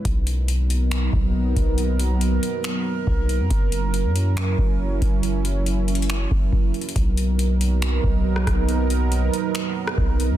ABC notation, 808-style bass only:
X:1
M:4/4
L:1/16
Q:1/4=139
K:B
V:1 name="808-style bass" clef=bass
B,,,8- B,,,2 B,,,4 B,,,2- | B,,,6 z6 B,,,3 F,, | F,,,4- F,,, F,,4- F,, F,,,4 F,,,2- | F,,,8- F,,,2 F,,,2 F,,,2 z2 |
B,,,8- B,,,2 B,,,4 B,,,2- | B,,,6 z6 B,,,3 F,, |]